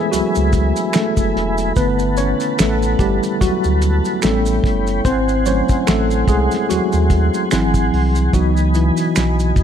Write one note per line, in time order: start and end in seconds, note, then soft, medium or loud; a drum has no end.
0.00 1.73 E3 medium
0.00 1.78 G#3 medium
0.00 0.96 A3 medium
0.00 1.73 B3 medium
0.00 1.78 C#4 medium
0.00 7.47 E4 medium
0.00 0.13 G#4 medium
0.00 0.94 A4 medium
0.00 1.77 B4 loud
0.00 1.78 C5 medium
0.00 1.78 C#5 medium
0.00 1.73 E5 medium
0.00 1.73 G#5 medium
0.00 5.01 B5 medium
0.12 0.23 C#2 soft
0.12 0.91 F#3 medium
0.12 0.90 F#4 medium
0.12 closed hi-hat medium
0.12 maracas medium
0.35 0.72 C#2 medium
0.35 closed hi-hat soft
0.35 maracas soft
0.53 kick medium
0.53 closed hi-hat medium
0.53 maracas soft
0.76 closed hi-hat soft
0.76 maracas soft
0.93 1.73 A3 medium
0.93 1.79 A4 medium
0.93 finger snap medium
0.93 snare loud
0.93 closed hi-hat medium
0.93 maracas medium
1.17 1.33 F#1 medium
1.17 kick medium
1.17 closed hi-hat soft
1.17 maracas soft
1.36 1.72 E1 medium
1.36 snare soft
1.36 closed hi-hat medium
1.58 closed hi-hat soft
1.58 maracas soft
1.76 2.34 G1 medium
1.76 4.19 D3 medium
1.76 2.60 A3 medium
1.76 2.16 B3 medium
1.76 2.19 B4 loud
1.76 4.20 F#5 medium
1.76 4.20 A5 medium
1.76 kick loud
1.76 closed hi-hat medium
1.76 maracas soft
1.99 closed hi-hat soft
1.99 maracas soft
2.17 2.57 C#4 medium
2.17 2.60 C#5 medium
2.17 closed hi-hat medium
2.17 maracas soft
2.40 closed hi-hat medium
2.40 maracas soft
2.59 2.95 A1 medium
2.59 2.98 A3 medium
2.59 3.01 A4 medium
2.59 finger snap medium
2.59 snare loud
2.59 closed hi-hat medium
2.59 maracas medium
2.82 closed hi-hat soft
2.82 maracas soft
2.99 3.20 G1 medium
2.99 3.39 G3 medium
2.99 3.42 G4 medium
2.99 kick medium
2.99 closed hi-hat medium
2.99 maracas soft
3.23 closed hi-hat soft
3.23 maracas soft
3.41 3.51 D2 soft
3.41 4.20 F#3 medium
3.41 4.19 F#4 medium
3.41 kick medium
3.41 closed hi-hat medium
3.41 maracas medium
3.64 4.01 D2 medium
3.64 closed hi-hat soft
3.64 maracas soft
3.82 closed hi-hat medium
3.82 maracas soft
4.05 closed hi-hat soft
4.05 maracas soft
4.22 4.60 A1 loud
4.22 4.80 G3 soft
4.22 5.02 A3 medium
4.22 4.80 B3 soft
4.22 4.80 C#4 medium
4.22 5.01 A4 medium
4.22 5.04 C#5 medium
4.22 5.04 G5 medium
4.22 finger snap medium
4.22 snare loud
4.22 closed hi-hat medium
4.22 maracas medium
4.46 closed hi-hat soft
4.46 maracas soft
4.64 5.01 F#1 loud
4.64 kick medium
4.64 snare soft
4.64 closed hi-hat medium
4.87 closed hi-hat soft
4.87 maracas soft
5.05 5.62 G#1 loud
5.05 5.44 C4 medium
5.05 5.46 C5 medium
5.05 7.49 F#5 medium
5.05 7.49 G#5 medium
5.05 7.49 C6 medium
5.05 kick loud
5.05 closed hi-hat medium
5.05 maracas soft
5.29 closed hi-hat soft
5.29 maracas soft
5.46 6.03 F#3 medium
5.46 5.87 A3 medium
5.46 5.85 C#4 medium
5.46 6.04 C5 medium
5.46 5.89 C#5 medium
5.46 closed hi-hat medium
5.46 maracas soft
5.69 kick medium
5.69 closed hi-hat medium
5.69 maracas soft
5.87 6.24 A1 medium
5.87 6.26 A3 medium
5.87 6.30 A4 medium
5.87 finger snap medium
5.87 snare loud
5.87 closed hi-hat medium
5.87 maracas medium
6.11 maracas soft
6.28 6.49 C2 medium
6.28 6.67 G#3 medium
6.28 6.67 G#4 medium
6.28 kick medium
6.28 closed hi-hat medium
6.28 maracas soft
6.51 snare soft
6.51 closed hi-hat soft
6.51 maracas soft
6.69 6.80 D#2 soft
6.69 7.48 F#3 medium
6.69 7.54 F#4 medium
6.69 closed hi-hat medium
6.69 maracas medium
6.92 7.30 D#2 medium
6.92 closed hi-hat soft
6.92 maracas soft
7.10 kick medium
7.10 closed hi-hat medium
7.10 maracas soft
7.34 closed hi-hat soft
7.34 maracas soft
7.51 7.73 G#1 loud
7.51 8.31 E3 medium
7.51 8.30 F#3 medium
7.51 8.31 C4 medium
7.51 8.36 E4 medium
7.51 8.33 G#4 medium
7.51 8.33 F#5 medium
7.51 9.63 G#5 medium
7.51 8.33 C6 medium
7.51 finger snap medium
7.51 snare loud
7.51 closed hi-hat medium
7.51 maracas medium
7.74 7.91 A1 medium
7.74 kick medium
7.74 closed hi-hat soft
7.74 maracas soft
7.94 8.30 C2 loud
7.94 open hi-hat soft
8.15 closed hi-hat soft
8.15 maracas soft
8.33 8.91 C#2 loud
8.33 8.75 E3 medium
8.33 8.53 F#3 medium
8.33 8.91 B3 soft
8.33 8.91 D#4 medium
8.33 9.63 F#4 medium
8.33 8.52 F#4 medium
8.33 9.63 D#5 medium
8.33 9.63 B5 medium
8.33 kick loud
8.33 closed hi-hat medium
8.33 maracas soft
8.57 closed hi-hat soft
8.57 maracas soft
8.74 9.63 E3 medium
8.74 9.63 E4 medium
8.74 closed hi-hat medium
8.74 maracas soft
8.97 closed hi-hat medium
8.97 maracas soft
9.16 9.53 B1 medium
9.16 finger snap medium
9.16 snare loud
9.16 closed hi-hat medium
9.16 maracas medium
9.39 closed hi-hat soft
9.39 maracas soft
9.56 9.63 D#2 medium
9.56 kick medium
9.56 closed hi-hat medium
9.56 maracas soft